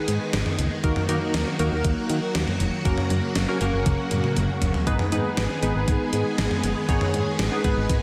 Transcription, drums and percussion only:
0, 0, Header, 1, 2, 480
1, 0, Start_track
1, 0, Key_signature, 5, "minor"
1, 0, Tempo, 504202
1, 797, Time_signature, 4, 2, 24, 8
1, 7640, End_track
2, 0, Start_track
2, 0, Title_t, "Drums"
2, 75, Note_on_c, 9, 42, 75
2, 170, Note_off_c, 9, 42, 0
2, 317, Note_on_c, 9, 38, 107
2, 318, Note_on_c, 9, 42, 63
2, 412, Note_off_c, 9, 38, 0
2, 413, Note_off_c, 9, 42, 0
2, 437, Note_on_c, 9, 45, 91
2, 532, Note_off_c, 9, 45, 0
2, 558, Note_on_c, 9, 42, 74
2, 653, Note_off_c, 9, 42, 0
2, 797, Note_on_c, 9, 36, 110
2, 797, Note_on_c, 9, 42, 61
2, 892, Note_off_c, 9, 36, 0
2, 892, Note_off_c, 9, 42, 0
2, 915, Note_on_c, 9, 45, 106
2, 1010, Note_off_c, 9, 45, 0
2, 1036, Note_on_c, 9, 42, 76
2, 1131, Note_off_c, 9, 42, 0
2, 1276, Note_on_c, 9, 38, 101
2, 1276, Note_on_c, 9, 42, 67
2, 1371, Note_off_c, 9, 38, 0
2, 1371, Note_off_c, 9, 42, 0
2, 1516, Note_on_c, 9, 42, 67
2, 1612, Note_off_c, 9, 42, 0
2, 1756, Note_on_c, 9, 42, 75
2, 1758, Note_on_c, 9, 36, 105
2, 1851, Note_off_c, 9, 42, 0
2, 1853, Note_off_c, 9, 36, 0
2, 1994, Note_on_c, 9, 42, 73
2, 2090, Note_off_c, 9, 42, 0
2, 2236, Note_on_c, 9, 38, 108
2, 2237, Note_on_c, 9, 42, 64
2, 2331, Note_off_c, 9, 38, 0
2, 2332, Note_off_c, 9, 42, 0
2, 2357, Note_on_c, 9, 45, 89
2, 2452, Note_off_c, 9, 45, 0
2, 2477, Note_on_c, 9, 42, 75
2, 2572, Note_off_c, 9, 42, 0
2, 2716, Note_on_c, 9, 36, 112
2, 2716, Note_on_c, 9, 42, 63
2, 2811, Note_off_c, 9, 36, 0
2, 2811, Note_off_c, 9, 42, 0
2, 2833, Note_on_c, 9, 45, 102
2, 2928, Note_off_c, 9, 45, 0
2, 2954, Note_on_c, 9, 42, 76
2, 3049, Note_off_c, 9, 42, 0
2, 3193, Note_on_c, 9, 42, 68
2, 3194, Note_on_c, 9, 38, 101
2, 3289, Note_off_c, 9, 38, 0
2, 3289, Note_off_c, 9, 42, 0
2, 3434, Note_on_c, 9, 42, 65
2, 3530, Note_off_c, 9, 42, 0
2, 3674, Note_on_c, 9, 42, 75
2, 3675, Note_on_c, 9, 48, 56
2, 3676, Note_on_c, 9, 36, 101
2, 3769, Note_off_c, 9, 42, 0
2, 3770, Note_off_c, 9, 48, 0
2, 3771, Note_off_c, 9, 36, 0
2, 3913, Note_on_c, 9, 42, 75
2, 3914, Note_on_c, 9, 47, 70
2, 4008, Note_off_c, 9, 42, 0
2, 4010, Note_off_c, 9, 47, 0
2, 4035, Note_on_c, 9, 47, 64
2, 4130, Note_off_c, 9, 47, 0
2, 4155, Note_on_c, 9, 45, 83
2, 4156, Note_on_c, 9, 42, 64
2, 4250, Note_off_c, 9, 45, 0
2, 4251, Note_off_c, 9, 42, 0
2, 4395, Note_on_c, 9, 42, 75
2, 4395, Note_on_c, 9, 43, 94
2, 4490, Note_off_c, 9, 42, 0
2, 4490, Note_off_c, 9, 43, 0
2, 4515, Note_on_c, 9, 43, 91
2, 4610, Note_off_c, 9, 43, 0
2, 4635, Note_on_c, 9, 36, 107
2, 4635, Note_on_c, 9, 42, 60
2, 4730, Note_off_c, 9, 36, 0
2, 4730, Note_off_c, 9, 42, 0
2, 4753, Note_on_c, 9, 45, 104
2, 4848, Note_off_c, 9, 45, 0
2, 4875, Note_on_c, 9, 42, 76
2, 4971, Note_off_c, 9, 42, 0
2, 5115, Note_on_c, 9, 38, 101
2, 5115, Note_on_c, 9, 42, 68
2, 5210, Note_off_c, 9, 38, 0
2, 5210, Note_off_c, 9, 42, 0
2, 5355, Note_on_c, 9, 42, 66
2, 5451, Note_off_c, 9, 42, 0
2, 5595, Note_on_c, 9, 42, 74
2, 5596, Note_on_c, 9, 36, 99
2, 5691, Note_off_c, 9, 42, 0
2, 5692, Note_off_c, 9, 36, 0
2, 5834, Note_on_c, 9, 42, 74
2, 5929, Note_off_c, 9, 42, 0
2, 6076, Note_on_c, 9, 38, 111
2, 6077, Note_on_c, 9, 42, 64
2, 6171, Note_off_c, 9, 38, 0
2, 6172, Note_off_c, 9, 42, 0
2, 6197, Note_on_c, 9, 45, 89
2, 6292, Note_off_c, 9, 45, 0
2, 6316, Note_on_c, 9, 42, 78
2, 6412, Note_off_c, 9, 42, 0
2, 6556, Note_on_c, 9, 36, 111
2, 6557, Note_on_c, 9, 42, 63
2, 6651, Note_off_c, 9, 36, 0
2, 6652, Note_off_c, 9, 42, 0
2, 6675, Note_on_c, 9, 45, 103
2, 6770, Note_off_c, 9, 45, 0
2, 6796, Note_on_c, 9, 42, 73
2, 6892, Note_off_c, 9, 42, 0
2, 7036, Note_on_c, 9, 38, 103
2, 7036, Note_on_c, 9, 42, 66
2, 7131, Note_off_c, 9, 38, 0
2, 7131, Note_off_c, 9, 42, 0
2, 7276, Note_on_c, 9, 42, 67
2, 7277, Note_on_c, 9, 36, 97
2, 7372, Note_off_c, 9, 42, 0
2, 7373, Note_off_c, 9, 36, 0
2, 7516, Note_on_c, 9, 42, 76
2, 7517, Note_on_c, 9, 36, 102
2, 7611, Note_off_c, 9, 42, 0
2, 7612, Note_off_c, 9, 36, 0
2, 7640, End_track
0, 0, End_of_file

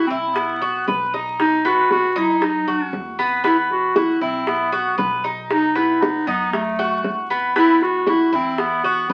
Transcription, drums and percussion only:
0, 0, Header, 1, 2, 480
1, 0, Start_track
1, 0, Tempo, 513259
1, 1297, Time_signature, 4, 2, 24, 8
1, 8538, End_track
2, 0, Start_track
2, 0, Title_t, "Drums"
2, 334, Note_on_c, 9, 60, 65
2, 427, Note_off_c, 9, 60, 0
2, 579, Note_on_c, 9, 60, 34
2, 672, Note_off_c, 9, 60, 0
2, 824, Note_on_c, 9, 60, 35
2, 824, Note_on_c, 9, 61, 78
2, 918, Note_off_c, 9, 60, 0
2, 918, Note_off_c, 9, 61, 0
2, 1064, Note_on_c, 9, 60, 33
2, 1158, Note_off_c, 9, 60, 0
2, 1306, Note_on_c, 9, 60, 66
2, 1399, Note_off_c, 9, 60, 0
2, 1545, Note_on_c, 9, 60, 34
2, 1638, Note_off_c, 9, 60, 0
2, 1783, Note_on_c, 9, 60, 57
2, 1877, Note_off_c, 9, 60, 0
2, 2262, Note_on_c, 9, 60, 64
2, 2355, Note_off_c, 9, 60, 0
2, 2501, Note_on_c, 9, 60, 33
2, 2595, Note_off_c, 9, 60, 0
2, 2740, Note_on_c, 9, 60, 33
2, 2740, Note_on_c, 9, 61, 74
2, 2834, Note_off_c, 9, 60, 0
2, 2834, Note_off_c, 9, 61, 0
2, 2983, Note_on_c, 9, 60, 34
2, 3076, Note_off_c, 9, 60, 0
2, 3222, Note_on_c, 9, 60, 57
2, 3315, Note_off_c, 9, 60, 0
2, 3468, Note_on_c, 9, 60, 31
2, 3562, Note_off_c, 9, 60, 0
2, 3701, Note_on_c, 9, 60, 67
2, 3795, Note_off_c, 9, 60, 0
2, 4181, Note_on_c, 9, 60, 65
2, 4275, Note_off_c, 9, 60, 0
2, 4421, Note_on_c, 9, 60, 38
2, 4514, Note_off_c, 9, 60, 0
2, 4664, Note_on_c, 9, 60, 33
2, 4664, Note_on_c, 9, 61, 79
2, 4757, Note_off_c, 9, 60, 0
2, 4757, Note_off_c, 9, 61, 0
2, 4905, Note_on_c, 9, 60, 32
2, 4999, Note_off_c, 9, 60, 0
2, 5149, Note_on_c, 9, 60, 65
2, 5242, Note_off_c, 9, 60, 0
2, 5393, Note_on_c, 9, 60, 35
2, 5486, Note_off_c, 9, 60, 0
2, 5634, Note_on_c, 9, 60, 66
2, 5728, Note_off_c, 9, 60, 0
2, 6111, Note_on_c, 9, 60, 68
2, 6204, Note_off_c, 9, 60, 0
2, 6352, Note_on_c, 9, 60, 35
2, 6446, Note_off_c, 9, 60, 0
2, 6587, Note_on_c, 9, 60, 33
2, 6587, Note_on_c, 9, 61, 75
2, 6681, Note_off_c, 9, 60, 0
2, 6681, Note_off_c, 9, 61, 0
2, 6830, Note_on_c, 9, 60, 33
2, 6924, Note_off_c, 9, 60, 0
2, 7070, Note_on_c, 9, 60, 60
2, 7164, Note_off_c, 9, 60, 0
2, 7310, Note_on_c, 9, 60, 36
2, 7404, Note_off_c, 9, 60, 0
2, 7544, Note_on_c, 9, 60, 66
2, 7638, Note_off_c, 9, 60, 0
2, 8027, Note_on_c, 9, 60, 69
2, 8121, Note_off_c, 9, 60, 0
2, 8262, Note_on_c, 9, 60, 37
2, 8356, Note_off_c, 9, 60, 0
2, 8507, Note_on_c, 9, 60, 31
2, 8507, Note_on_c, 9, 61, 76
2, 8538, Note_off_c, 9, 60, 0
2, 8538, Note_off_c, 9, 61, 0
2, 8538, End_track
0, 0, End_of_file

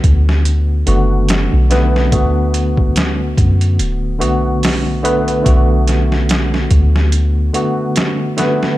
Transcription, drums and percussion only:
0, 0, Header, 1, 2, 480
1, 0, Start_track
1, 0, Key_signature, 2, "minor"
1, 0, Tempo, 833333
1, 1222, Time_signature, 4, 2, 24, 8
1, 5056, End_track
2, 0, Start_track
2, 0, Title_t, "Drums"
2, 22, Note_on_c, 9, 36, 97
2, 22, Note_on_c, 9, 42, 68
2, 79, Note_off_c, 9, 36, 0
2, 80, Note_off_c, 9, 42, 0
2, 166, Note_on_c, 9, 38, 54
2, 224, Note_off_c, 9, 38, 0
2, 261, Note_on_c, 9, 42, 85
2, 319, Note_off_c, 9, 42, 0
2, 500, Note_on_c, 9, 42, 63
2, 557, Note_off_c, 9, 42, 0
2, 741, Note_on_c, 9, 42, 91
2, 750, Note_on_c, 9, 38, 120
2, 798, Note_off_c, 9, 42, 0
2, 807, Note_off_c, 9, 38, 0
2, 983, Note_on_c, 9, 42, 71
2, 992, Note_on_c, 9, 38, 57
2, 1041, Note_off_c, 9, 42, 0
2, 1050, Note_off_c, 9, 38, 0
2, 1130, Note_on_c, 9, 38, 52
2, 1187, Note_off_c, 9, 38, 0
2, 1223, Note_on_c, 9, 42, 90
2, 1224, Note_on_c, 9, 36, 109
2, 1280, Note_off_c, 9, 42, 0
2, 1281, Note_off_c, 9, 36, 0
2, 1463, Note_on_c, 9, 42, 74
2, 1521, Note_off_c, 9, 42, 0
2, 1598, Note_on_c, 9, 36, 94
2, 1656, Note_off_c, 9, 36, 0
2, 1704, Note_on_c, 9, 42, 90
2, 1713, Note_on_c, 9, 38, 118
2, 1762, Note_off_c, 9, 42, 0
2, 1771, Note_off_c, 9, 38, 0
2, 1944, Note_on_c, 9, 36, 92
2, 1946, Note_on_c, 9, 42, 68
2, 2002, Note_off_c, 9, 36, 0
2, 2004, Note_off_c, 9, 42, 0
2, 2080, Note_on_c, 9, 42, 42
2, 2138, Note_off_c, 9, 42, 0
2, 2185, Note_on_c, 9, 42, 86
2, 2243, Note_off_c, 9, 42, 0
2, 2427, Note_on_c, 9, 42, 66
2, 2485, Note_off_c, 9, 42, 0
2, 2667, Note_on_c, 9, 46, 76
2, 2677, Note_on_c, 9, 38, 119
2, 2725, Note_off_c, 9, 46, 0
2, 2734, Note_off_c, 9, 38, 0
2, 2908, Note_on_c, 9, 42, 72
2, 2966, Note_off_c, 9, 42, 0
2, 3041, Note_on_c, 9, 42, 49
2, 3098, Note_off_c, 9, 42, 0
2, 3144, Note_on_c, 9, 36, 104
2, 3145, Note_on_c, 9, 42, 89
2, 3201, Note_off_c, 9, 36, 0
2, 3202, Note_off_c, 9, 42, 0
2, 3384, Note_on_c, 9, 42, 72
2, 3393, Note_on_c, 9, 38, 46
2, 3442, Note_off_c, 9, 42, 0
2, 3451, Note_off_c, 9, 38, 0
2, 3526, Note_on_c, 9, 38, 45
2, 3583, Note_off_c, 9, 38, 0
2, 3624, Note_on_c, 9, 42, 93
2, 3634, Note_on_c, 9, 38, 125
2, 3682, Note_off_c, 9, 42, 0
2, 3691, Note_off_c, 9, 38, 0
2, 3767, Note_on_c, 9, 38, 52
2, 3824, Note_off_c, 9, 38, 0
2, 3862, Note_on_c, 9, 42, 67
2, 3863, Note_on_c, 9, 36, 94
2, 3920, Note_off_c, 9, 36, 0
2, 3920, Note_off_c, 9, 42, 0
2, 4007, Note_on_c, 9, 38, 54
2, 4065, Note_off_c, 9, 38, 0
2, 4103, Note_on_c, 9, 42, 85
2, 4160, Note_off_c, 9, 42, 0
2, 4345, Note_on_c, 9, 42, 66
2, 4403, Note_off_c, 9, 42, 0
2, 4584, Note_on_c, 9, 42, 92
2, 4593, Note_on_c, 9, 38, 112
2, 4641, Note_off_c, 9, 42, 0
2, 4650, Note_off_c, 9, 38, 0
2, 4825, Note_on_c, 9, 42, 74
2, 4835, Note_on_c, 9, 38, 57
2, 4883, Note_off_c, 9, 42, 0
2, 4892, Note_off_c, 9, 38, 0
2, 4969, Note_on_c, 9, 38, 53
2, 5027, Note_off_c, 9, 38, 0
2, 5056, End_track
0, 0, End_of_file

